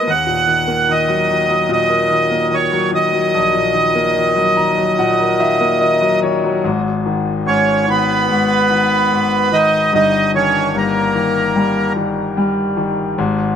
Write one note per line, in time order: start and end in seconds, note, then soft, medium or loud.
0.00 0.11 D#5 medium
0.07 3.29 D#2 medium
0.07 0.92 F#5 loud
0.27 1.68 A#2 soft
0.48 0.87 D#3 medium
0.67 2.27 A#3 medium
0.89 1.27 D#3 medium
0.89 1.71 D#5 medium
1.09 1.47 F#3 soft
1.29 2.08 D#3 soft
1.49 2.70 F#3 soft
1.69 3.52 A#2 medium
1.69 2.55 D#5 loud
1.90 3.49 A#4 soft
2.10 2.50 D#3 soft
2.31 3.90 A#3 soft
2.51 2.91 D#3 medium
2.51 2.91 C#5 medium
2.72 3.12 F#3 soft
2.92 3.72 D#3 medium
2.92 6.20 D#5 medium
3.13 4.35 F#3 medium
3.34 6.61 A#1 medium
3.54 4.97 A#2 soft
3.74 4.15 D#3 medium
3.95 5.56 A#3 medium
4.16 4.55 D#3 medium
4.36 4.76 F#3 medium
4.57 5.39 D#3 medium
4.57 4.95 A#5 medium
4.78 6.00 F#3 medium
4.99 6.61 A#2 medium
4.99 5.37 F#5 medium
5.20 6.61 A#4 soft
5.40 5.79 D#3 medium
5.40 5.78 E5 medium
5.60 6.61 A#3 medium
5.81 6.21 D#3 medium
5.81 6.20 D#5 medium
6.02 6.43 F#3 medium
6.23 6.63 D#3 soft
6.23 6.61 C#5 medium
6.44 6.64 F#3 medium
6.64 9.89 G#1 medium
6.64 7.45 G#2 medium
7.06 7.86 D#3 medium
7.46 8.28 G#2 medium
7.46 7.86 C#4 medium
7.46 7.90 C#5 medium
7.87 8.69 D#3 medium
7.87 9.49 B3 medium
7.87 9.58 B4 medium
8.29 9.10 G#2 medium
8.70 9.50 D#3 medium
9.11 9.90 G#2 medium
9.52 9.91 D#3 medium
9.52 9.91 D#4 medium
9.52 9.93 D#5 loud
9.93 13.13 G1 medium
9.93 10.73 G2 medium
9.93 10.31 D#4 medium
9.93 10.32 D#5 loud
10.34 11.14 D#3 medium
10.34 10.72 C#4 medium
10.34 10.76 C#5 medium
10.75 12.32 G2 medium
10.75 11.93 A#3 medium
10.75 11.93 A#4 medium
11.15 11.95 D#3 medium
11.56 12.36 G3 medium
11.96 12.75 D#3 medium
12.37 13.15 G3 medium
12.77 13.16 D#3 medium
13.18 13.56 G#1 medium
13.18 13.56 G#2 medium